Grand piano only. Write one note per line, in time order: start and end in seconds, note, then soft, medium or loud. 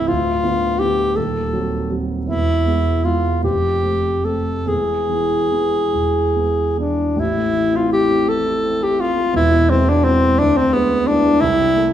0.00 0.11 C1 soft
0.00 0.10 C2 soft
0.00 0.11 E3 soft
0.00 0.11 A3 soft
0.00 0.11 C4 soft
0.08 0.42 D1 soft
0.08 0.42 D2 soft
0.43 0.75 D3 soft
0.43 0.76 B3 soft
0.43 0.76 F4 soft
0.80 1.13 D3 soft
0.80 1.13 B3 soft
0.80 1.13 F4 soft
1.17 1.52 D#1 soft
1.17 1.52 D#2 soft
1.53 1.86 F#3 soft
1.53 1.86 C4 soft
1.53 1.87 F#4 soft
1.90 2.24 F#3 soft
1.90 2.24 C4 soft
1.90 2.24 F#4 soft
2.27 2.64 E1 soft
2.27 2.64 E2 soft
2.66 3.00 G#3 soft
2.66 3.00 B3 soft
2.66 3.01 E4 soft
3.04 3.39 G#3 soft
3.04 3.39 B3 soft
3.43 3.82 F1 soft
3.43 3.81 F2 soft
3.83 4.21 A3 soft
3.83 4.21 C4 soft
4.24 4.63 A3 soft
4.24 4.63 C4 soft
4.66 5.08 E1 soft
4.66 5.08 E2 soft
5.09 5.48 E3 soft
5.09 5.48 B3 soft
5.09 5.48 E4 soft
5.51 5.90 E3 soft
5.51 5.90 B3 soft
5.51 5.90 E4 soft
5.93 6.35 E1 soft
5.93 6.35 E2 soft
6.35 6.75 E3 soft
6.35 6.75 B3 soft
6.35 6.75 E4 soft
6.77 7.14 E3 soft
6.77 7.14 B3 soft
6.77 7.15 E4 soft
7.16 9.28 A1 soft
7.16 9.28 A2 soft
7.37 7.66 A3 soft
7.53 7.83 E3 soft
7.72 8.01 C4 soft
7.90 8.19 E4 soft
8.08 8.37 C4 soft
8.27 8.55 E3 soft
8.45 8.74 E4 soft
8.64 8.92 C4 soft
8.81 9.09 E4 soft
8.98 9.26 C4 soft
9.16 9.34 A3 soft
9.33 10.35 E1 medium
9.33 10.35 E2 medium
9.51 9.79 B2 soft
9.69 9.97 G#3 soft
9.87 10.15 B3 soft
10.03 10.31 E4 soft
10.20 10.38 G#3 soft
10.38 11.38 D2 medium
10.55 10.83 D3 soft
10.73 11.00 G#3 soft
10.90 11.17 B3 medium
11.07 11.35 E4 soft
11.23 11.41 G#3 soft
11.41 11.93 C2 medium
11.59 11.87 C3 soft
11.76 11.93 A3 medium